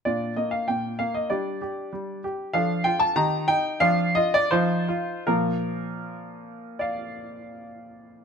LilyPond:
<<
  \new Staff \with { instrumentName = "Grand piano" } { \time 2/4 \key bes \major \tempo 4 = 89 << { d''8 ees''16 f''16 g''8 f''16 ees''16 | d''4. r8 | f''8 g''16 a''16 bes''8 g''8 | f''8 ees''16 d''16 c''4 |
bes'2~ | bes'2 | } \\ { <d' f'>2 | <d' g'>2 | <d' a'>4 <ees' g'>4 | <d' f'>4 <ees' f'>4 |
r2 | <d'' f''>2 | } >> }
  \new Staff \with { instrumentName = "Grand piano" } { \clef bass \time 2/4 \key bes \major bes,8 bes8 bes,8 bes8 | g8 g'8 g8 g'8 | f8 f'8 ees8 ees'8 | f8 f'8 f8 f'8 |
<bes, f>2~ | <bes, f>2 | }
>>